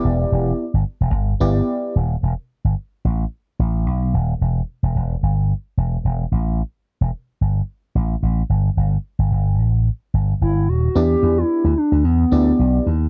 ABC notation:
X:1
M:4/4
L:1/16
Q:1/4=110
K:Em
V:1 name="FM electric piano"
[B,EGd]4 z6 [B,EGd]4 z2 | z16 | z16 | z16 |
z16 | [B,DEGd]6 z4 [B,DEGd]4 z2 |]
V:2 name="Soft synth lead"
z16 | z16 | z16 | z16 |
z12 E2 F2 | G3 E3 D2 B,6 z2 |]
V:3 name="Slap bass" clef=bass
E,,,2 E,,,2 z G,,, z E,,, G,,,2 G,,,2 z2 ^D,,,2 | E,,, z2 G,,, z2 A,,,2 z2 A,,,2 B,,,2 ^D,,,2 | E,,,2 z E,,, E,,,2 G,,,3 z E,,,2 E,,,2 A,,,2- | A,,, z2 E,,, z2 G,,,2 z2 A,,,2 A,,,2 G,,,2 |
G,,,2 z G,,, G,,,2 A,,,3 z G,,,2 G,,,2 ^D,,,2 | E,,2 E,,2 z D,, z D,, E,,2 D,,2 B,,,2 ^D,,2 |]